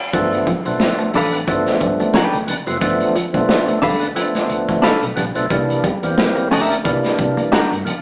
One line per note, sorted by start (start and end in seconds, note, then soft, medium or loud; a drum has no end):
0.13 0.41 G1 loud
0.13 0.49 F3 loud
0.13 0.29 F3 medium
0.13 0.49 A3 medium
0.13 0.49 B3 loud
0.13 0.49 D4 loud
0.13 kick loud
0.13 closed hi-hat medium
0.33 closed hi-hat soft
0.47 0.63 F3 medium
0.47 kick loud
0.47 closed hi-hat medium
0.47 high conga medium
0.65 0.78 B1 medium
0.65 1.11 F3 medium
0.65 1.11 A3 medium
0.65 1.12 B3 medium
0.65 1.12 D4 medium
0.65 muted clean electric guitar stroke soft
0.65 closed hi-hat soft
0.80 muted clean electric guitar stroke soft
0.80 snare loud
0.80 muted conga soft
0.80 high conga medium
0.98 1.11 A3 medium
0.98 closed hi-hat soft
0.98 muted conga soft
1.14 1.42 A1 medium
1.14 1.30 G3 medium
1.14 1.36 D4 medium
1.14 1.36 A4 medium
1.14 1.36 B4 medium
1.14 open hi-hat medium
1.14 high conga medium
1.14 low conga medium
1.18 1.37 F5 medium
1.33 1.40 B3 soft
1.33 1.41 D4 soft
1.33 closed hi-hat soft
1.47 1.63 G1 medium
1.47 2.18 F3 medium
1.47 2.18 A3 medium
1.47 2.19 B3 medium
1.47 2.19 D4 medium
1.47 muted clean electric guitar stroke soft
1.47 kick loud
1.47 closed hi-hat medium
1.47 muted conga soft
1.66 snare soft
1.66 closed hi-hat soft
1.80 1.97 G2 medium
1.80 1.96 F3 medium
1.80 kick medium
1.80 closed hi-hat medium
2.00 2.12 A3 medium
2.00 closed hi-hat soft
2.00 high conga medium
2.14 2.30 F3 medium
2.14 2.36 D4 medium
2.14 2.37 A4 medium
2.14 2.37 B4 medium
2.14 2.37 G5 loud
2.14 muted fingered electric bass stroke soft
2.14 snare loud
2.33 2.46 D2 medium
2.33 muted clean electric guitar stroke soft
2.33 closed hi-hat soft
2.47 2.57 B3 soft
2.47 2.58 D4 soft
2.47 closed hi-hat medium
2.47 high conga medium
2.47 low conga medium
2.66 2.80 F#1 medium
2.66 2.77 F3 medium
2.66 2.79 G3 medium
2.66 2.77 A3 medium
2.66 2.78 B3 medium
2.66 2.78 F4 medium
2.66 closed hi-hat soft
2.80 2.97 G1 medium
2.80 3.17 F3 loud
2.80 2.97 F3 medium
2.80 3.17 A3 loud
2.80 3.17 B3 medium
2.80 3.18 D4 loud
2.80 kick loud
2.80 closed hi-hat medium
3.00 closed hi-hat soft
3.00 muted conga soft
3.16 3.31 F3 medium
3.16 closed hi-hat medium
3.16 high conga medium
3.33 3.47 B1 medium
3.33 3.79 F3 medium
3.33 3.79 A3 medium
3.33 3.80 B3 medium
3.33 3.80 D4 medium
3.33 muted clean electric guitar stroke soft
3.33 kick medium
3.33 closed hi-hat medium
3.49 muted clean electric guitar stroke soft
3.49 snare loud
3.49 high conga soft
3.68 3.80 A3 medium
3.68 muted fingered electric bass stroke soft
3.68 closed hi-hat medium
3.68 muted conga soft
3.82 4.11 D2 medium
3.82 3.99 G3 medium
3.82 4.03 D4 medium
3.82 4.04 A4 medium
3.82 4.04 B4 medium
3.82 4.04 F5 medium
3.82 kick loud
3.82 open hi-hat medium
3.82 high conga medium
3.82 low conga medium
4.00 4.08 B3 soft
4.00 4.09 D4 soft
4.00 closed hi-hat soft
4.15 4.87 F3 medium
4.15 4.32 F3 medium
4.15 4.87 A3 medium
4.15 4.87 B3 medium
4.15 4.24 C#4 medium
4.15 closed hi-hat medium
4.23 4.90 D4 medium
4.35 muted fingered electric bass stroke soft
4.35 muted clean electric guitar stroke soft
4.35 snare soft
4.35 closed hi-hat soft
4.49 4.78 D2 medium
4.49 closed hi-hat soft
4.68 4.81 A3 medium
4.68 kick medium
4.68 closed hi-hat soft
4.68 high conga medium
4.82 5.04 D4 medium
4.82 5.04 A4 medium
4.82 5.05 B4 medium
4.82 5.05 F5 loud
4.82 snare medium
5.02 5.15 B1 medium
5.02 closed hi-hat soft
5.02 muted conga soft
5.16 5.33 A#1 loud
5.16 5.33 G3 medium
5.16 5.26 B3 soft
5.16 5.27 D4 soft
5.16 closed hi-hat medium
5.16 high conga medium
5.16 low conga loud
5.35 5.48 B1 medium
5.35 5.46 F3 medium
5.35 5.46 A3 medium
5.35 5.46 B3 medium
5.35 5.47 D4 medium
5.35 closed hi-hat soft
5.50 5.79 C2 loud
5.50 5.86 E3 loud
5.50 5.86 G3 loud
5.50 5.67 G3 medium
5.50 5.86 A#3 loud
5.50 5.86 D4 loud
5.50 kick loud
5.50 closed hi-hat medium
5.50 muted conga soft
5.70 closed hi-hat soft
5.84 5.99 G3 medium
5.84 kick loud
5.84 closed hi-hat medium
5.84 high conga medium
6.02 6.15 E2 medium
6.02 6.48 E3 medium
6.02 6.49 G3 medium
6.02 6.49 A#3 medium
6.02 6.49 C4 medium
6.02 muted clean electric guitar stroke soft
6.02 closed hi-hat medium
6.18 muted clean electric guitar stroke soft
6.18 snare loud
6.18 muted conga soft
6.18 high conga medium
6.36 6.48 A#3 medium
6.36 closed hi-hat soft
6.36 muted conga soft
6.51 6.87 D2 medium
6.51 6.67 A3 medium
6.51 6.73 D4 medium
6.51 6.74 G4 medium
6.51 6.74 A#4 medium
6.51 6.74 E5 medium
6.51 open hi-hat medium
6.51 high conga medium
6.51 low conga medium
6.69 6.77 A#3 soft
6.69 6.78 D4 soft
6.69 closed hi-hat soft
6.84 7.01 C2 medium
6.84 7.55 E3 medium
6.84 7.56 G3 medium
6.84 7.56 A#3 medium
6.84 7.56 D4 loud
6.84 muted clean electric guitar stroke soft
6.84 kick loud
6.84 closed hi-hat medium
6.84 muted conga soft
7.04 snare soft
7.04 closed hi-hat medium
7.18 7.35 C3 loud
7.18 7.34 G3 medium
7.18 kick medium
7.18 closed hi-hat medium
7.37 7.50 A#3 medium
7.37 closed hi-hat soft
7.37 high conga medium
7.52 7.68 G3 medium
7.52 7.73 D4 medium
7.52 7.73 G4 medium
7.52 7.74 A#4 medium
7.52 7.74 F#5 medium
7.52 muted fingered electric bass stroke soft
7.52 snare loud
7.52 muted conga soft
7.71 7.84 G2 medium
7.71 muted clean electric guitar stroke soft
7.71 closed hi-hat medium
7.85 7.95 A#3 soft
7.85 7.95 D4 soft
7.85 closed hi-hat medium
7.85 high conga medium
7.85 low conga medium